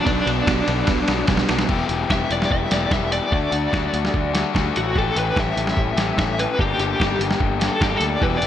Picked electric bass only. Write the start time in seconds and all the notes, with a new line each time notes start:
0.06 B1
0.26 B1
0.47 B1
0.68 B1
0.88 B1
1.08 B1
1.28 B1
1.49 B1
1.69 E1
1.89 E1
2.10 E1
2.30 E1
2.51 E1
2.72 E1
2.91 E1
3.32 D2
3.52 D2
3.73 D2
3.94 D2
4.14 D2
4.55 D2
4.77 A1
4.95 A1
5.16 A1
5.37 A1
5.57 A1
5.77 A1
5.96 A1
6.17 A1
6.59 G1
6.78 G1
7.00 G1
7.19 G1
7.40 G1
7.81 G1
8.00 D2
8.22 E1
8.41 E1